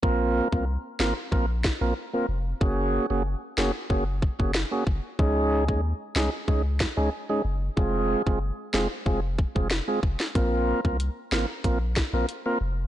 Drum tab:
HH |----------------|----------------|----------------|----------------|
SD |------o---o-----|------o-----o---|------o---o-----|------o-----o--o|
BD |o--o----o-o-----|o-------o-oo--o-|o--o----o-o-----|o--o----o-oo--o-|

HH |x---x---x---x---|
SD |------o---o-----|
BD |o--o----o-o-----|